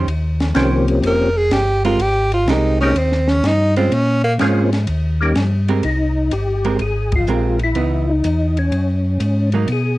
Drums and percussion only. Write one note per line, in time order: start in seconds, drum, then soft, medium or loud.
0.08 ride medium
0.40 snare medium
0.40 ride soft
0.55 snare medium
0.55 hi-hat pedal medium
0.55 ride medium
0.88 ride soft
1.03 ride medium
1.51 snare medium
1.51 hi-hat pedal medium
1.51 ride medium
1.85 ride soft
2.00 ride medium
2.32 ride soft
2.48 snare medium
2.48 hi-hat pedal medium
2.48 ride medium
2.96 ride medium
3.12 snare soft
3.28 snare soft
3.44 snare medium
3.44 hi-hat pedal medium
3.44 ride medium
3.76 ride soft
3.92 ride medium
4.39 snare medium
4.39 hi-hat pedal medium
4.39 ride medium
4.73 snare soft
4.73 ride soft
4.87 ride medium
5.35 snare medium
5.35 hi-hat pedal medium
5.35 ride medium
5.68 ride soft
5.83 ride medium
6.31 hi-hat pedal soft
6.31 ride medium
6.64 ride soft
6.79 ride medium
7.12 kick medium
7.12 ride medium
7.27 hi-hat pedal medium
7.59 ride soft
7.75 ride medium
8.24 hi-hat pedal medium
8.24 ride medium
8.57 ride soft
8.72 ride medium
9.20 hi-hat pedal soft
9.20 ride medium
9.52 ride soft
9.68 ride medium